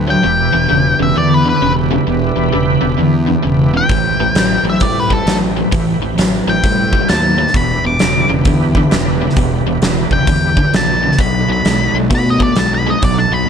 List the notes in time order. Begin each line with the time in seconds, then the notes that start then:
Already playing: D2 C4 E4 G4 B4
0.08 A2 F#3 G5
0.23 E1 E2 B2 D4 E4 G4 B4
0.53 E1 E2 B2
0.69 E1 E2 C#3
0.99 E1 E2 C#3 E5
1.16 E2 D3 D5
1.34 B4
1.45 E2 D3 B4
1.62 E1 E2 C#3
1.91 E2 C#3
2.07 E1 E2 B2
2.36 E1 E2 B2
2.53 E1 E2 C#3
2.81 E1 E2 C#3
2.98 E2 D3
3.27 E2 D3
3.43 E1 E2 C#3
3.74 E2 C#3 G5
3.88 A1 A2 E3 C4 E4 G4 B4, kick, open hi-hat
4.19 A1 A2 E3
4.35 A1 A2 F#3, snare, open hi-hat
4.63 A1 A2 F#3
4.69 E5
4.80 A2 G3 D5, kick, open hi-hat
5.00 B4
5.10 A2 G3 A4, kick
5.26 A1 A2 F#3, snare, open hi-hat
5.56 A2 F#3
5.72 A1 A2 E3, kick, open hi-hat
6.00 A1 A2 E3
6.18 A1 A2 F#3, snare, open hi-hat
6.47 A1 A2 F#3 G5
6.63 A2 G3, kick, open hi-hat
6.93 A2 G3, kick
7.09 D#2 A2 F#3 A5, snare, open hi-hat
7.38 A2 F#3
7.47 snare
7.54 E1 E2 B2 D4 E4 G4 B4 B5, kick, open hi-hat
7.84 E1 E2 B2 D6
7.99 E1 E2 C#3, snare, open hi-hat
8.29 E1 E2 C#3
8.45 E2 D3, kick, open hi-hat
8.75 E2 D3, kick
8.91 E1 E2 C#3, snare, open hi-hat
9.22 E2 C#3
9.30 snare
9.36 E1 E2 B2, kick, open hi-hat
9.66 E1 E2 B2
9.82 E1 E2 C#3, snare, open hi-hat
10.11 E1 E2 C#3 G5, kick
10.27 E2 D3, kick, open hi-hat
10.57 E2 D3, kick
10.73 A#1 E2 C#3 A5, snare, open hi-hat
11.03 E2 C#3
11.12 snare
11.17 B1 B2 F#3 D4 D#4 F#4 A4 B5, kick, open hi-hat
11.48 B1 B2 F#3 B5
11.65 B1 B2 G#3, snare, open hi-hat
11.94 B1 B2 G#3
12.10 B2 A3, kick, open hi-hat
12.15 B5
12.30 D#5
12.39 B2 A3 D5, kick
12.56 B1 B2 G#3 A5, snare, open hi-hat
12.75 B5
12.87 B2 G#3 D#5
13.02 B1 B2 F#3 D5, kick, open hi-hat
13.18 A5
13.31 B1 B2 F#3 B5